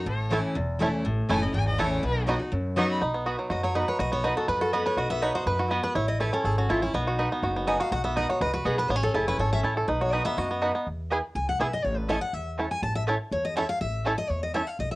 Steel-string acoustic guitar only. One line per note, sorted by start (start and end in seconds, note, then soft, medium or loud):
0.06 0.53 A2 loud
0.30 0.54 E3 loud
0.30 0.55 A3 medium
0.30 0.55 C#4 medium
0.30 0.55 E4 loud
0.55 1.02 E2 medium
0.79 1.03 E3 loud
0.79 1.04 A3 loud
0.79 1.04 C#4 loud
0.79 1.04 E4 loud
1.05 1.52 A2 medium
1.29 1.41 E3 medium
1.29 1.42 A3 loud
1.29 1.42 C#4 medium
1.29 1.40 E4 loud
1.41 1.54 C#4 medium
1.41 1.53 E4 medium
1.54 2.01 E2 medium
1.78 2.02 E3 medium
1.78 2.02 A3 loud
1.78 2.03 C#4 loud
1.78 2.03 E4 loud
2.03 2.50 B2 medium
2.27 2.39 F#3 medium
2.27 2.40 B3 loud
2.27 2.40 D#4 medium
2.27 2.38 F#4 loud
2.39 2.52 D#4 soft
2.39 2.51 F#4 medium
2.52 2.99 F#2 medium
2.76 3.00 F#3 medium
2.76 3.00 B3 loud
2.76 3.00 D#4 loud
2.76 3.01 F#4 loud
3.51 3.63 D#5 medium
3.64 3.75 C#5 medium
3.75 3.87 B4 medium
3.88 3.99 C#5 medium
4.00 4.12 D#5 loud
4.13 4.24 C#5 loud
4.24 4.36 B4 medium
4.37 4.48 A4 medium
4.49 4.61 B4 loud
4.61 4.73 A4 medium
4.73 4.86 B4 medium
4.86 4.98 C#5 medium
4.98 5.10 D#5 medium
5.10 5.22 E5 loud
5.22 5.35 C#5 medium
5.35 5.46 C5 medium
5.47 5.59 B4 medium
5.59 5.71 D#4 soft
5.71 5.83 F#4 medium
5.84 5.95 B4 loud
5.95 6.08 C#5 medium
6.08 6.20 D#5 loud
6.20 6.33 B4 medium
6.33 6.45 A4 medium
6.45 6.57 G#4 medium
6.58 6.69 F#4 medium
6.70 6.82 F4 medium
6.82 6.94 E4 medium
6.94 7.64 D#4 medium
7.67 7.80 G#5 medium
7.80 7.92 F5 loud
7.92 8.04 F#5 loud
8.04 8.16 E5 medium
8.17 8.29 D#5 medium
8.30 8.41 C#5 medium
8.41 8.53 D#5 loud
8.54 8.65 B4 medium
8.66 8.78 G#4 medium
8.79 8.91 B4 loud
8.91 9.03 C#5 loud
9.03 9.14 A4 medium
9.14 9.27 G#4 medium
9.28 9.39 B4 loud
9.39 9.52 C#5 medium
9.53 9.59 E5 loud
9.88 10.00 B4 medium
10.01 10.13 C#5 loud
10.13 10.25 D#5 medium
10.25 10.38 E5 loud
10.38 10.87 D#5 loud
11.35 11.48 G#5 medium
11.49 11.60 F#5 loud
11.60 11.73 E5 loud
11.73 11.85 D#5 loud
11.85 11.97 C#5 medium
11.97 12.09 B4 medium
12.09 12.21 D#5 medium
12.21 12.34 F#5 loud
12.34 12.71 E5 loud
12.71 12.82 G#5 loud
12.83 12.95 A5 loud
12.95 13.03 E5 loud
13.32 13.44 C#5 medium
13.45 13.56 D#5 medium
13.57 13.69 E5 loud
13.69 13.80 F5 loud
13.81 14.16 E5 loud
14.18 14.30 D#5 loud
14.30 14.42 C#5 medium
14.43 14.54 D#5 medium
14.54 14.67 E5 medium
14.67 14.79 F5 loud
14.80 14.91 D#5 medium
14.91 14.95 E5 medium